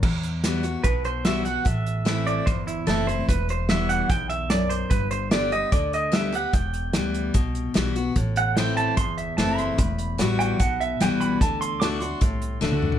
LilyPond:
<<
  \new Staff \with { instrumentName = "Pedal steel guitar" } { \time 4/4 \key e \minor \tempo 4 = 148 r2 b'8 c''8 e''8 fis''8 | e''4. d''8 c''8 e'8 a'8 c''8 | b'8 c''8 e''8 fis''8 g''8 e''8 d''8 c''8 | b'8 c''8 d''8 dis''8 d''8 dis''8 e''8 fis''8 |
g''2. r4 | r8 fis''8 g''8 a''8 c'''8 e''8 a''8 c'''8 | b''4. g''8 fis''8 e''8 g''8 b''8 | a''8 c'''8 d'''8 c'''2~ c'''16 r16 | }
  \new Staff \with { instrumentName = "Steel-string acoustic guitar" } { \time 4/4 \key e \minor << { r4 <e g b fis'>8 <b fis'>8 r4 <e g b fis'>8 <b fis'>8 | r4 <e a c' e'>4 r4 <e a c' e'>8 <c' e'>8 | r4 <e g b fis'>4 r2 | r4 <d g b g'>8 <b g'>8 r4 <d g b g'>8 <b g'>8 |
r4 <e g b>4 r4 <e g b fis'>8 <b fis'>8 | r4 <e a c' e'>4 r4 <e a c' e'>4 | r4 <e g b fis'>4 r4 <e g b fis'>4 | r4 <d a d' fis'>8 <d' fis'>8 r4 <d a d' fis'>4 | } \\ { e,2 b,2 | a,2 e,2 | e,2 e,4 fis,4 | g,2 d2 |
e,2 b,2 | a,2 e,2 | e,2 b,2 | d2 a,2 | } >> }
  \new Staff \with { instrumentName = "Upright bass" } { \clef bass \time 4/4 \key e \minor e,2 b,,2 | a,,2 g,,4 fis,,4 | e,,2 b,,2 | g,,2 d,2 |
e,,4 d,4 c,4 b,,4 | a,,2 g,,4 fis,,4 | e,,4 a,,4 b,,4 c,4 | d,2 c,4 d,4 | }
  \new DrumStaff \with { instrumentName = "Drums" } \drummode { \time 4/4 <cymc bd>8 hh8 <hh sn>8 hh8 <hh bd>8 hh8 <hh sn>8 hh8 | <hh bd>8 hh8 <hh sn>8 hh8 <hh bd>8 hh8 <hh sn>8 hh8 | <hh bd>8 hh8 <hh sn>8 hh8 <hh bd>8 hh8 <hh sn>8 hh8 | <hh bd>8 hh8 <hh sn>8 hh8 <hh bd>8 hh8 <hh sn>8 hh8 |
<hh bd>8 hh8 <hh sn>8 hh8 <hh bd>8 hh8 <hh sn>8 hh8 | <hh bd>8 hh8 <hh sn>8 hh8 <hh bd>8 hh8 <hh sn>8 hh8 | <hh bd>8 hh8 <hh sn>8 hh8 <hh bd>8 hh8 <hh sn>8 hh8 | <hh bd>8 hh8 <hh sn>8 hh8 <hh bd>8 hh8 sn16 tommh16 toml16 tomfh16 | }
>>